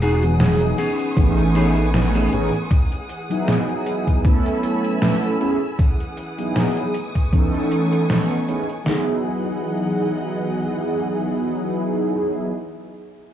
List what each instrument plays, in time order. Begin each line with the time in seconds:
Already playing: analog synth bass E1, string section G#4 F#5 D#6
0.01 clean electric guitar D#4 F#4 G#4, closed hi-hat
0.21 analog polysynth E3 F#3 B3 D#4 G#4, closed hi-hat
0.40 muted clean electric guitar stroke, snare, closed hi-hat
0.61 closed hi-hat
0.78 clean electric guitar B3 C#4 D#4 G#4, string section B4 G#5 C#6, closed hi-hat
0.99 closed hi-hat
1.16 analog synth bass A1, analog polysynth E3 A3 B3 C#4 D#4, kick, closed hi-hat
1.38 closed hi-hat
1.55 clean electric guitar B3 C#4 D#4 G#4, closed hi-hat
1.77 closed hi-hat
1.93 analog polysynth E3 A3 B3 C#4 D#4, snare, closed hi-hat
2.14 clean electric guitar B3 C#4 D#4 G#4, closed hi-hat
2.32 analog synth bass A1, analog polysynth E3 B3 C#4 D#4 G#4, closed hi-hat
2.53 muted clean electric guitar stroke
2.70 string section E3 G#4 F#5, kick, closed hi-hat
2.92 closed hi-hat
3.10 closed hi-hat
3.29 analog polysynth F#3 B3 D#4 E4 G#4, closed hi-hat
3.48 snare, closed hi-hat
3.69 closed hi-hat
3.87 closed hi-hat
4.07 kick, closed hi-hat
4.24 string section F#3 A4 G#5 B5 E6, analog polysynth A3 B3 C#4 E4 A4, kick, closed hi-hat
4.46 closed hi-hat
4.63 closed hi-hat
4.84 closed hi-hat
5.01 analog polysynth A3 B3 C#4 E4 A4, snare, closed hi-hat
5.23 closed hi-hat
5.39 analog polysynth A3 B3 C#4 E4 G#4, closed hi-hat
5.78 string section E3 G#4 F#5 D#6, kick, closed hi-hat
6.00 closed hi-hat
6.17 closed hi-hat
6.38 analog polysynth F#3 B3 D#4 E4 G#4, closed hi-hat
6.56 snare, closed hi-hat
6.77 closed hi-hat
6.94 string section A3 B4 G#5 C#6, closed hi-hat
7.15 kick, closed hi-hat
7.32 analog polysynth E3 B3 C#4 D#4 A4, kick, closed hi-hat
7.54 closed hi-hat
7.71 closed hi-hat
7.92 closed hi-hat
8.09 analog polysynth E3 B3 C#4 D#4 A4, snare, closed hi-hat
8.31 closed hi-hat
8.47 analog polysynth E3 B3 C#4 D#4 G#4, closed hi-hat
8.69 closed hi-hat
8.84 string section E3 G#4 D#5 F#5, analog polysynth F#3 B3 D#4 E4, snare
8.88 analog polysynth G#4